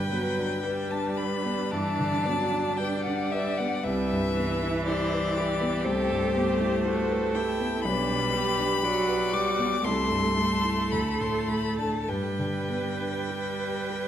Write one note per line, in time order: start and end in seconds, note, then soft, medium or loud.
0.00 1.67 G2 soft
0.00 0.27 D3 soft
0.00 0.67 B4 medium
0.00 1.72 B4 soft
0.00 0.92 G5 medium
0.11 0.64 F#3 soft
0.11 0.54 B3 soft
0.38 0.80 D4 soft
0.65 1.73 G3 soft
0.65 3.85 D4 medium
0.65 1.07 B4 soft
0.91 1.34 D4 soft
0.91 1.19 A5 medium
1.17 1.61 B4 soft
1.17 1.73 B5 medium
1.45 1.88 B3 soft
1.71 3.80 G2 soft
1.71 2.27 E3 soft
1.71 2.77 D5 soft
1.71 2.79 A5 medium
1.99 2.41 D3 soft
2.25 2.79 F#3 soft
2.25 2.68 B3 soft
2.52 2.94 D4 soft
2.77 3.84 G3 soft
2.77 3.21 B4 soft
2.77 3.85 D5 medium
2.77 3.03 G5 medium
3.04 3.48 D4 soft
3.04 3.33 F#5 medium
3.31 3.74 B4 soft
3.31 3.59 E5 medium
3.57 3.85 B3 soft
3.57 3.85 F#5 medium
3.83 5.82 C2 medium
3.83 4.35 G3 soft
3.83 5.86 E4 medium
3.83 4.88 B4 medium
3.83 4.86 E5 medium
4.12 4.52 G2 soft
4.36 5.87 E3 medium
4.36 4.77 B3 soft
4.63 5.02 E4 soft
4.86 5.27 G4 soft
4.86 5.38 C5 medium
4.86 5.86 D5 medium
5.12 5.51 B4 soft
5.37 6.85 G4 medium
5.37 5.76 G4 medium
5.61 6.01 B3 soft
5.84 7.81 C2 soft
5.84 7.86 A3 medium
5.84 6.35 A4 medium
5.84 7.36 C5 medium
6.10 6.51 G2 soft
6.34 6.76 B3 soft
6.34 6.85 G4 medium
6.61 7.01 E4 soft
6.86 7.37 F#4 medium
6.86 7.26 G4 soft
6.86 7.87 A4 medium
7.11 7.50 B4 soft
7.35 7.87 E4 medium
7.35 7.75 G4 soft
7.35 7.83 G5 medium
7.60 7.85 B3 soft
7.84 9.81 B1 medium
7.84 8.83 G3 medium
7.84 8.34 D4 medium
7.84 8.86 B4 medium
7.84 9.35 B5 medium
8.09 8.48 B2 soft
8.33 8.73 B3 soft
8.33 8.85 G4 medium
8.58 8.98 D4 soft
8.83 9.35 F#3 medium
8.83 9.86 F#4 medium
8.83 9.24 G4 soft
8.83 9.86 D5 medium
9.08 9.49 B4 soft
9.33 9.84 G3 medium
9.33 9.74 G4 soft
9.33 9.86 D6 medium
9.59 9.85 B3 soft
9.84 10.88 C2 medium
9.84 12.10 A3 medium
9.84 10.37 E4 medium
9.84 10.92 A4 soft
9.84 10.93 C6 medium
10.10 10.53 G2 soft
10.37 10.81 A3 soft
10.37 12.10 A4 medium
10.64 10.92 E4 soft
10.92 12.05 D2 soft
10.92 12.10 A4 soft
10.92 11.23 B5 medium
11.21 11.67 A2 soft
11.21 11.50 C6 medium
11.48 11.96 A3 soft
11.48 11.78 B5 medium
11.78 12.08 D4 soft
11.78 12.10 A5 soft
12.08 14.08 G2 soft
12.08 14.08 G3 soft
12.08 14.08 B4 soft
12.08 13.19 B4 soft
12.08 14.08 G5 medium
12.39 12.88 D3 soft
12.70 13.18 B3 soft
13.00 13.48 D4 soft
13.30 13.78 G4 soft
13.30 14.08 B4 soft
13.60 14.07 B4 soft
13.90 14.08 G4 soft